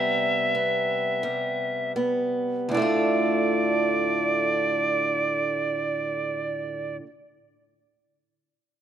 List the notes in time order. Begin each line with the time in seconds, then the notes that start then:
Already playing: C3 G3 B3 E5
0.55 B3
1.23 G3
1.96 B3
2.69 D2 A2 D5
2.74 D3 A3
2.79 D4 F4